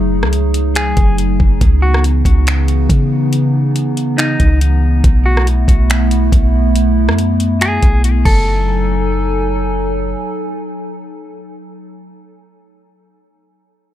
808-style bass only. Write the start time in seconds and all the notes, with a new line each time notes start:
Already playing: F#1
0.22 C#2
0.97 F#1
1.40 F#1
1.61 C#2
2.25 C#2
2.90 C#3
4.40 C#2
5.04 B1
5.68 B1
6.32 B1
7.08 F#2
7.83 B1
8.26 F#1